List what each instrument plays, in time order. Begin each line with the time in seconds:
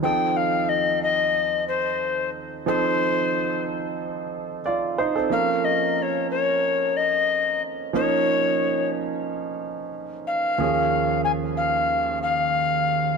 0.03 grand piano F3 C4 D#4 A4, recorder G5
0.37 recorder F5
0.69 recorder D#5
1.03 recorder D#5
1.68 recorder C5
2.66 grand piano F3 C4 D#4 A4, recorder C5
4.66 grand piano F4 D5
4.98 grand piano D#4 C5
5.16 grand piano C4 A4
5.30 grand piano F3 A#3 C#4 A#4, recorder F5
5.65 recorder D#5
5.98 recorder D#5
6.02 recorder C#5
6.30 recorder C#5
6.97 recorder D#5
7.93 grand piano F3 A#3 C#4 D#4, recorder C#5
10.27 recorder F5
10.58 grand piano D#2 F3 A#3 C#4 G#4
11.24 recorder G#5
11.57 recorder F5
12.23 recorder F5